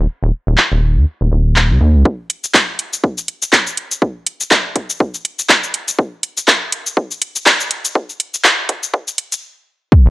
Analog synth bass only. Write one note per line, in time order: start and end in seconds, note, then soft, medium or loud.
0.23 0.31 D#1 loud
0.47 0.56 D#1 loud
0.72 0.98 D#1 loud
0.97 1.05 D#2 medium
1.21 1.30 D#1 medium
1.32 1.72 D#1 medium
1.70 1.79 C#2 medium
1.81 1.96 D#2 medium
1.95 2.03 C#2 medium
10.06 10.10 D#1 loud